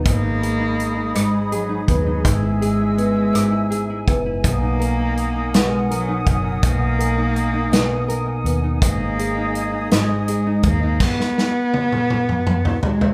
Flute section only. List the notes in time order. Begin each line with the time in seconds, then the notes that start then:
0.05 G#4 D#5 B5 D#6
2.25 E5 G#5 E6
4.44 A#4 F#5 D#6
8.82 G#4 D#5 D#6